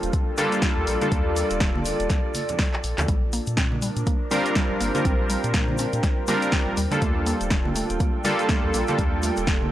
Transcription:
Already playing: G3 A#3 D4 F4 A4 C5 D5 G5
0.03 D#1, closed hi-hat, shaker
0.13 kick, closed hi-hat, shaker
0.37 G3 A#3 D4 F4 A4, open hi-hat, high conga, shaker
0.52 closed hi-hat, shaker
0.62 kick, snare, closed hi-hat, shaker
0.77 D#2
0.87 A#1, open hi-hat, shaker
1.01 G3 A#3 D4 F4 A4, closed hi-hat, high conga, shaker
1.12 D#2, kick, closed hi-hat, shaker
1.36 open hi-hat, shaker
1.50 D#1, closed hi-hat, shaker
1.60 kick, snare, closed hi-hat, shaker
1.75 high conga
1.85 open hi-hat, shaker
2.00 D#1, closed hi-hat, shaker
2.10 kick, snare, closed hi-hat, shaker
2.34 open hi-hat, high conga, shaker
2.49 closed hi-hat, low conga, shaker
2.59 kick, snare, open hi-hat, shaker
2.74 clap
2.84 A#1, open hi-hat, shaker
2.98 D#2, clap, closed hi-hat, high conga, low conga, shaker
3.08 A#1 G3 D4, kick, closed hi-hat, shaker
3.31 A#3 A#4, open hi-hat, shaker
3.46 A#2, closed hi-hat, shaker
3.57 C4, kick, snare, closed hi-hat, shaker
3.72 high conga
3.79 G3 C5, open hi-hat, shaker
3.96 A#2, closed hi-hat, shaker
4.06 A#3, kick, closed hi-hat, shaker
4.31 G3 C4 D4 F4 A#4, open hi-hat, high conga, shaker
4.46 closed hi-hat, shaker
4.55 G3, kick, snare, closed hi-hat, shaker
4.62 G5
4.70 A#1
4.81 G1 A#3, open hi-hat, shaker
4.94 G3 C4 D4 F4 A#4, closed hi-hat, high conga, shaker
5.05 A#1 C4, kick, closed hi-hat, shaker
5.30 G3, open hi-hat, shaker
5.44 A#2, closed hi-hat, shaker
5.54 A#3, kick, snare, closed hi-hat, shaker
5.68 high conga
5.78 C4, open hi-hat, shaker
5.93 A#2, closed hi-hat, shaker
6.03 G3, kick, snare, closed hi-hat, shaker
6.27 G3 A#3 C4 D4 F4 A#4, open hi-hat, high conga, shaker
6.42 closed hi-hat, shaker
6.52 C4, kick, snare, open hi-hat, shaker
6.67 A#1
6.77 D#2 G3 F4, open hi-hat, shaker
6.91 G3 A#3 D4 F4 A4, closed hi-hat, high conga, shaker
6.98 D#2 A3 A4, kick, closed hi-hat, shaker
7.26 A#3, open hi-hat, shaker
7.35 D5
7.41 D#1, closed hi-hat, shaker
7.50 G3, kick, snare, closed hi-hat, shaker
7.65 high conga
7.76 A3, open hi-hat, shaker
7.90 D#1, closed hi-hat, shaker
8.00 A#3, kick, closed hi-hat, shaker
8.24 G3 A#3 D4 F4 A4, open hi-hat, high conga, shaker
8.39 closed hi-hat, shaker
8.49 A3, kick, snare, closed hi-hat, shaker
8.64 D#2
8.74 A#1 A#3, open hi-hat, shaker
8.88 G3 A#3 D4 F4 A4, closed hi-hat, high conga, shaker
8.99 D#2 G3, kick, closed hi-hat, shaker
9.23 A3, open hi-hat, shaker
9.37 D#1, closed hi-hat, shaker
9.47 A#3, kick, snare, closed hi-hat, shaker
9.62 high conga

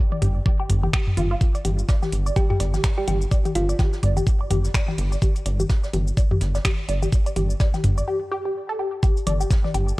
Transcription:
0.12 D5, high tom
0.22 G1 G4, mid tom, open hi-hat
0.46 D5, kick, high tom
0.60 G4
0.69 G1, mid tom, open hi-hat
0.83 G4, high tom
0.93 G4, finger snap, kick, open hi-hat
1.07 mid tom
1.17 G1 F4, open hi-hat, high tom
1.31 F4
1.41 kick, closed hi-hat, shaker
1.55 D5, closed hi-hat, open hi-hat, shaker
1.65 G1 G4, closed hi-hat, open hi-hat, high tom
1.79 shaker
1.88 D5, kick, snare, closed hi-hat, shaker
2.02 G4, snare, high tom, shaker
2.12 G1, closed hi-hat, open hi-hat
2.26 D5, shaker
2.36 G4, kick, closed hi-hat, high tom, shaker
2.50 G4, mid tom
2.60 G1 D5, snare, closed hi-hat, open hi-hat
2.74 G4, snare, high tom, shaker
2.84 finger snap, kick, snare, open hi-hat, shaker
2.98 G4 D5
3.08 G1 G4, closed hi-hat, open hi-hat, high tom
3.22 shaker
3.31 D5, kick, closed hi-hat, shaker
3.45 G4, open hi-hat, high tom, shaker
3.55 G1 F4, closed hi-hat, open hi-hat
3.69 D5, shaker
3.79 G4, kick, snare, closed hi-hat, high tom, shaker
3.93 snare, shaker
4.03 G1 D5, closed hi-hat, mid tom, open hi-hat
4.17 G4, high tom, shaker
4.27 kick, closed hi-hat, shaker
4.41 D5
4.50 G1 G4, closed hi-hat, mid tom, open hi-hat, high tom
4.64 snare, shaker
4.74 D5, finger snap, kick, snare, closed hi-hat, open hi-hat, shaker
4.88 G4, snare, high tom
4.98 G1, open hi-hat
5.12 D5, shaker
5.22 G4, kick, closed hi-hat, high tom, shaker
5.36 closed hi-hat, open hi-hat, shaker
5.46 G1 D5, closed hi-hat, open hi-hat
5.60 G4, high tom, shaker
5.69 kick, snare, closed hi-hat, shaker
5.83 D5, snare, shaker
5.93 G1 G4, closed hi-hat, open hi-hat, high tom
6.07 shaker
6.17 D5, kick, closed hi-hat, shaker
6.31 G4, mid tom, high tom
6.41 G1, snare, closed hi-hat, open hi-hat
6.55 D5, snare, shaker
6.64 G4, finger snap, kick, snare, closed hi-hat, open hi-hat, high tom, shaker
6.89 G1 D5, closed hi-hat, open hi-hat
7.02 G4, high tom, shaker
7.12 kick, closed hi-hat, shaker
7.26 D5, open hi-hat, shaker
7.36 G1 G4, closed hi-hat, open hi-hat, high tom
7.50 shaker
7.60 D5, kick, snare, closed hi-hat, shaker
7.74 G4, snare, high tom, shaker
7.84 G1, closed hi-hat, mid tom, open hi-hat
7.98 D5, shaker
8.08 G4
8.31 G4
8.45 G4
8.69 A4
8.79 G4
9.03 G4, kick, closed hi-hat, shaker
9.17 closed hi-hat, shaker
9.27 G1 D5, closed hi-hat, open hi-hat, high tom
9.41 G4, shaker
9.50 kick, snare, closed hi-hat, shaker
9.64 D5, snare, high tom
9.74 G1 G4, closed hi-hat, open hi-hat
9.88 shaker

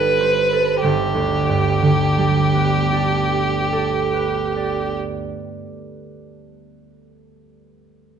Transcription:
Already playing: G1 G3 D#4 A4 B4 C5
0.20 C5
0.53 A4
0.82 G1 G4
1.15 D2
1.48 G2
1.82 D3
2.18 G3
2.54 B3
2.92 D4
3.32 G4
3.72 A4
4.13 B4
4.56 D5

